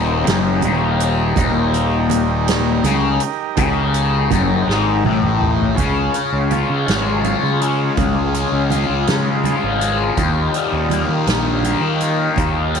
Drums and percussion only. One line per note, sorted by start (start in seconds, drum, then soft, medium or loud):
0.25 snare loud
0.25 closed hi-hat medium
0.25 low conga soft
0.61 closed hi-hat medium
0.61 high conga medium
0.61 low conga medium
1.00 closed hi-hat medium
1.36 kick loud
1.36 closed hi-hat medium
1.36 high conga medium
1.36 low conga medium
1.54 low conga soft
1.74 closed hi-hat medium
2.10 closed hi-hat medium
2.10 high conga loud
2.10 low conga medium
2.48 snare loud
2.48 closed hi-hat loud
2.84 closed hi-hat medium
2.84 high conga medium
2.84 low conga medium
3.20 closed hi-hat medium
3.57 kick loud
3.57 closed hi-hat medium
3.57 high conga medium
3.57 low conga medium
3.94 closed hi-hat medium
4.31 kick medium
4.31 closed hi-hat medium
4.31 high conga medium
4.31 low conga loud
4.50 low conga soft
4.70 snare medium
5.05 high tom medium
5.05 high conga medium
5.05 low conga medium
5.23 mid tom medium
5.23 low conga soft
5.41 mid tom medium
5.60 floor tom medium
5.77 kick medium
5.77 closed hi-hat medium
5.77 high conga medium
5.77 low conga medium
6.14 closed hi-hat medium
6.51 closed hi-hat medium
6.51 high conga medium
6.51 low conga medium
6.88 snare loud
6.88 closed hi-hat medium
7.24 closed hi-hat medium
7.24 high conga medium
7.24 low conga medium
7.62 closed hi-hat medium
7.97 kick loud
7.97 closed hi-hat medium
7.97 high conga medium
7.97 low conga medium
8.34 closed hi-hat medium
8.70 closed hi-hat medium
8.70 high conga medium
8.70 low conga medium
9.07 snare loud
9.07 closed hi-hat medium
9.07 low conga soft
9.44 closed hi-hat medium
9.44 high conga medium
9.44 low conga medium
9.81 closed hi-hat medium
10.17 kick loud
10.17 closed hi-hat medium
10.17 high conga medium
10.17 low conga medium
10.54 closed hi-hat medium
10.90 closed hi-hat medium
10.90 high conga medium
10.90 low conga medium
11.27 snare loud
11.27 closed hi-hat medium
11.63 closed hi-hat medium
11.63 high conga medium
11.63 low conga medium
12.01 closed hi-hat medium
12.36 kick loud
12.36 closed hi-hat medium
12.36 high conga medium
12.36 low conga medium
12.75 closed hi-hat medium